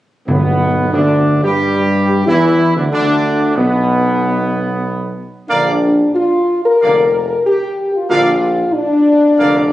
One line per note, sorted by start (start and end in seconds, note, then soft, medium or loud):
0.27 0.89 B1 medium
0.27 1.23 G2 medium
0.27 0.89 B2 medium
0.27 0.89 B3 medium
0.27 0.90 B3 medium
0.92 1.45 D2 medium
0.92 1.40 D3 medium
0.92 1.40 D4 medium
1.43 2.27 G2 medium
1.43 2.23 G3 medium
1.43 2.22 G4 medium
1.43 2.23 G4 medium
2.26 2.73 E2 medium
2.26 2.73 E3 medium
2.26 2.72 E4 medium
2.76 2.91 D2 medium
2.76 2.91 D3 medium
2.76 2.83 D4 medium
2.76 2.91 D4 medium
2.92 3.54 D2 medium
2.92 3.53 D3 medium
2.92 3.53 D4 medium
3.56 5.14 B1 medium
3.56 5.14 B2 medium
3.56 5.17 B3 medium
3.56 5.14 B3 medium
5.48 6.04 A#1 medium
5.48 5.72 D3 medium
5.48 5.72 A#3 medium
5.48 6.11 D4 medium
5.48 5.71 D5 medium
5.48 5.71 F5 medium
6.15 6.62 F4 loud
6.65 7.42 A#4 loud
6.81 7.36 F1 medium
6.81 7.05 D3 medium
6.81 7.05 A#3 medium
6.81 7.04 D5 medium
6.81 7.04 F5 medium
7.47 7.91 G4 loud
7.95 8.09 F4 medium
8.09 8.64 A#1 medium
8.09 8.32 D3 medium
8.09 8.32 A#3 medium
8.09 8.70 F4 loud
8.09 8.33 D5 medium
8.09 8.32 F5 medium
8.73 9.73 D4 loud
9.38 9.73 F1 medium
9.38 9.62 D3 medium
9.38 9.61 A#3 medium
9.38 9.61 D5 medium
9.38 9.61 F5 medium